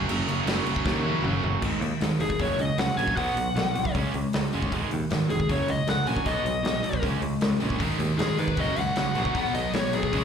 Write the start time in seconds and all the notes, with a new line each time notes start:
Already playing: F#2 C#3 F#3
0.09 F#1 F#2 C#3 F#3, crash
0.27 F#1 F#2 C#3 F#3, crash
0.46 F#1 F#2 C#3 F#3, snare, crash
0.65 F#1 F#2 C#3 F#3, crash
0.76 kick
0.86 D#2 F#2 C#3 F#3, kick, snare
1.05 F#2 C#3 F#3, high tom
1.23 F#1 F#2 C#3 F#3, mid tom
1.42 F#1 F#2 C#3 F#3, floor tom
1.62 G#1 G#2 D#3 G#3, kick, crash
1.80 D#2 G#2 D#3, open hi-hat
2.00 G#1 G#2 D#3, snare, open hi-hat
2.19 F1 G#2 D#3 G#4, open hi-hat
2.30 kick
2.39 F#1 F#2 C#3 F#3 C#5, kick, open hi-hat
2.58 C#2 F#2 C#3 D#5, open hi-hat
2.77 C#2 F#2 C#3 F#5, snare, open hi-hat
2.96 A#1 F#2 C#3 F#3 G#5, open hi-hat
3.08 kick
3.16 B1 B2 F#3 B3 F#5, kick, open hi-hat
3.35 B1 B2 F#3, open hi-hat
3.55 B1 B2 F#3, snare, open hi-hat
3.74 C2 B2 F#3, open hi-hat
3.85 kick
3.95 C#2 C#3 G#3 C#4, kick, open hi-hat
4.14 C#2 C#3 G#3, open hi-hat
4.33 C#2 C#3 G#3, snare, open hi-hat
4.53 F#1 C#3 G#3 C#4, open hi-hat
4.62 kick
4.72 G#1 G#2 D#3 G#3, kick, open hi-hat
4.91 D#2 G#2 D#3, open hi-hat
5.10 G#1 G#2 D#3, snare, open hi-hat
5.30 F1 G#2 D#3 G#4, open hi-hat
5.40 kick
5.49 F#1 F#2 C#3 F#3 C#5, kick, open hi-hat
5.68 C#2 F#2 C#3 D#5, open hi-hat
5.87 C#2 F#2 C#3 F#5, snare, open hi-hat
6.05 A#1 F#2 C#3 F#3 G#5, open hi-hat
6.17 kick
6.24 B1 B2 F#3 B3 D#5, kick, open hi-hat
6.44 B1 B2 F#3, open hi-hat
6.63 B1 B2 F#3, snare, open hi-hat
6.83 B1 B2 F#3, open hi-hat
6.93 kick
7.02 C#2 C#3 G#3 C#4, kick, open hi-hat
7.21 C#2 C#3 G#3, open hi-hat
7.41 C#2 C#3 G#3, snare, open hi-hat
7.60 A#1 C#3 G#3 C#4, open hi-hat
7.70 kick
7.79 G#1 G#2 D#3 G#3, kick, open hi-hat
7.99 D#2 G#2 D#3, open hi-hat
8.18 G#1 G#2 D#3 G#4, snare, open hi-hat
8.37 G#2 D#3 G#3 B4, open hi-hat
8.48 kick
8.57 F#1 F#2 C#3 F#3 D#5, kick, open hi-hat
8.76 C#2 F#2 C#3 F#5, open hi-hat
8.96 C#2 F#2 C#3, snare, open hi-hat
9.15 A#1 F#2 C#3 F#3, open hi-hat
9.25 kick
9.34 B1 B2 F#3 B3, kick, open hi-hat
9.54 B1 B2 F#3 D#5, open hi-hat
9.74 B1 B2 F#3 C#5, snare, open hi-hat
9.92 B1 B2 F#3 B3 G#4, open hi-hat
10.03 kick
10.12 C#2 C#3 G#3 C#4, kick, open hi-hat